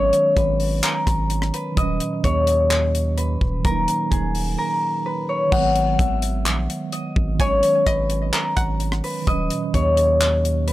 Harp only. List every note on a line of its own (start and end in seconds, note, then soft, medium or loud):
0.00 1.81 C#5 loud
0.00 1.21 D#5 medium
0.37 0.89 B4 medium
0.83 1.60 A#4 medium
1.54 3.17 B4 medium
1.77 3.56 D#5 loud
2.24 4.15 C#5 medium
3.17 3.71 B4 medium
3.65 4.58 A#4 loud
4.11 6.38 G#4 medium
4.58 5.12 A#4 medium
5.06 7.11 B4 medium
5.29 7.20 C#5 medium
5.52 7.13 F#5 loud
5.99 6.99 E5 medium
6.93 8.71 D#5 medium
7.40 9.31 C#5 loud
7.87 8.39 B4 medium
8.33 9.10 A#4 medium
9.04 10.67 B4 medium
9.27 10.73 D#5 loud
9.74 10.73 C#5 medium
10.67 10.73 B4 medium